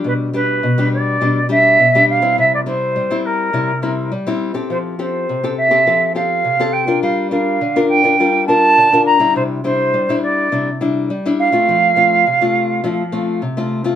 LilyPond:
<<
  \new Staff \with { instrumentName = "Flute" } { \time 4/4 \key f \major \tempo 4 = 103 b'8 b'4 d''4 e''4 f''8 | e''16 d''16 c''4 bes'4. r4 | c''8 c''4 e''4 f''4 g''8 | f''8 f''4 g''4 a''4 bes''8 |
c''8 c''4 d''4 r4 f''8~ | f''2. r4 | }
  \new Staff \with { instrumentName = "Nylon-string guitar" } { \time 4/4 \key f \major << { <g d' g'>8 <g d' g'>8 r16 <g d' g'>8. <g d' g'>16 r16 <g d' g'>8 r16 <g d' g'>8 <g c' e'>16~ | <g c' e'>8 <g c' e'>8. <g c' e'>8. <g c' e'>16 r16 <g c' e'>8 r16 <g c' e'>8 <c' g' a'>16~ | <c' g' a'>8 <c' g' a'>8. <c' g' a'>8 <c' g' a'>16 <c' g' a'>8 <c' g' a'>8. <c' g' a'>8 <d' f' bes'>16~ | <d' f' bes'>8 <d' f' bes'>8 r16 <d' f' bes'>8 <d' f' bes'>16 <d' f' bes'>8 <d' f' bes'>8. <d' f' bes'>8 <g d' e'>16~ |
<g d' e'>8 <g d' e'>8. <g d' e'>8. <g d' e'>16 r16 <g d' e'>8 r16 <g d' e'>8 <a c' f'>16~ | <a c' f'>8 <a c' f'>8 r16 <a c' f'>8. <a c' f'>16 r16 <a c' f'>8 r16 <a c' f'>8 <a c' f'>16 | } \\ { b,4 b,4 b,4 b,4 | c4 g4 c4 g4 | f4 c4 f4 c4 | g4 d4 g4 d4 |
c4 g4 c4 g4 | f4 c4 f4 c4 | } >> }
>>